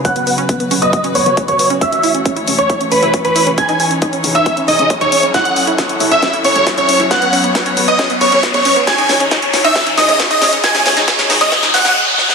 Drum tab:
HH |xxoxxxoxxxoxxxox|xxoxxxoxxxoxxxox|xxoxxxoxxxoxxxox|xxoxxxoxxxoxxxox|
SD |----------------|----------------|----------------|o---o---o---o---|
T2 |------o---oo-o--|------o----o---o|------o---oo-o--|------o----o---o|
BD |o---o---o---o---|o---o---o---o---|o---o---o---o---|o---o---o---o---|

HH |xxoxxxoxxxoxxxox|xxoxxxoxxxoxxxox|xxoxxxoxxxox----|
SD |o---o---o---o---|o-o-o-o-o-o-o-o-|oooooooooooo--oo|
T2 |------o---oo-o--|------o----o---o|------o---oo----|
BD |o---o---o---o---|o---o---o---o---|o---o---o-------|